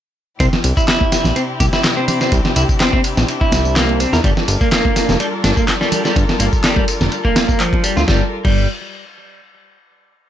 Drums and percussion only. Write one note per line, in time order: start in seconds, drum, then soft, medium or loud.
0.40 kick loud
0.40 ride medium
0.40 tambourine soft
0.53 snare soft
0.53 low conga medium
0.64 ride medium
0.64 tambourine medium
0.64 muted conga soft
0.77 kick medium
0.77 tambourine soft
0.88 snare loud
0.88 clap loud
0.88 ride medium
0.88 tambourine soft
1.01 kick medium
1.01 high conga medium
1.12 snare medium
1.12 ride medium
1.12 tambourine medium
1.24 snare soft
1.24 tambourine soft
1.24 low conga medium
1.36 ride medium
1.36 tambourine soft
1.60 kick medium
1.60 ride medium
1.60 tambourine medium
1.60 high conga medium
1.73 snare medium
1.73 tambourine soft
1.84 snare loud
1.84 clap loud
1.84 ride medium
1.84 tambourine soft
2.08 ride medium
2.08 ride loud
2.08 tambourine medium
2.08 low conga medium
2.21 snare medium
2.21 tambourine soft
2.32 kick loud
2.32 ride medium
2.32 tambourine soft
2.45 snare soft
2.45 low conga medium
2.56 ride medium
2.56 tambourine medium
2.56 muted conga soft
2.69 kick loud
2.69 tambourine soft
2.80 snare loud
2.80 clap loud
2.80 ride medium
2.80 tambourine soft
2.93 kick medium
2.93 high conga medium
3.04 ride medium
3.04 tambourine medium
3.17 snare medium
3.17 tambourine soft
3.17 low conga medium
3.28 ride medium
3.28 tambourine soft
3.41 kick medium
3.52 snare medium
3.52 ride medium
3.52 tambourine medium
3.52 muted conga soft
3.52 high conga loud
3.65 tambourine soft
3.65 muted conga medium
3.76 snare loud
3.76 clap loud
3.76 ride medium
3.76 tambourine soft
3.89 muted conga medium
4.00 ride medium
4.00 tambourine medium
4.13 snare soft
4.13 tambourine soft
4.24 kick loud
4.24 ride medium
4.24 tambourine soft
4.37 snare soft
4.37 low conga medium
4.48 ride medium
4.48 tambourine medium
4.48 muted conga soft
4.61 kick medium
4.61 tambourine soft
4.72 snare loud
4.72 clap loud
4.72 ride medium
4.72 tambourine soft
4.85 kick medium
4.85 high conga loud
4.96 snare medium
4.96 ride medium
4.96 tambourine medium
5.09 snare soft
5.09 tambourine soft
5.09 low conga medium
5.20 ride medium
5.20 tambourine soft
5.44 snare loud
5.44 ride medium
5.44 tambourine medium
5.44 high conga loud
5.57 kick medium
5.57 tambourine soft
5.68 snare soft
5.68 clap loud
5.68 ride medium
5.68 tambourine soft
5.81 snare soft
5.92 ride medium
5.92 tambourine medium
5.92 low conga medium
6.05 snare medium
6.05 tambourine soft
6.16 kick loud
6.16 ride medium
6.16 tambourine soft
6.29 snare soft
6.29 low conga medium
6.39 ride medium
6.39 tambourine medium
6.39 muted conga soft
6.53 kick medium
6.53 tambourine soft
6.64 snare loud
6.64 clap loud
6.64 ride medium
6.64 tambourine soft
6.76 kick medium
6.76 high conga loud
6.88 ride medium
6.88 tambourine medium
7.01 snare soft
7.01 tambourine soft
7.01 low conga medium
7.12 ride medium
7.12 tambourine soft
7.25 kick medium
7.36 snare loud
7.36 ride medium
7.36 tambourine medium
7.36 muted conga soft
7.36 high conga medium
7.49 kick medium
7.49 tambourine soft
7.49 muted conga medium
7.60 clap loud
7.60 ride medium
7.60 tambourine soft
7.73 kick medium
7.73 muted conga medium
7.84 ride medium
7.84 tambourine medium
7.97 snare soft
7.97 tambourine soft
8.08 kick loud
8.08 snare medium
8.45 kick loud
8.45 crash medium